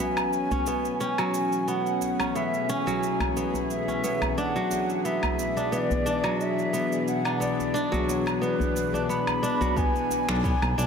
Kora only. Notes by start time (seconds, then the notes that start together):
Already playing: F#3 C#4
0.00 B3
0.51 C#4
0.67 B3
1.00 C#4
1.19 F#3
1.68 B3
2.19 C#4
2.35 B3
2.69 C#4
2.87 F#3
3.37 B3
3.88 C#4
4.04 B3
4.38 D4
4.56 F#3
5.05 B3
5.57 D4
5.72 B3
6.06 D4
6.24 F#3
6.73 B3
7.25 D4
7.40 B3
7.74 D4
7.92 F#3
8.41 B3
8.94 D4
9.09 B3
9.43 D4
9.61 F#3
9.77 B3
10.28 D4
10.44 B3
10.78 D4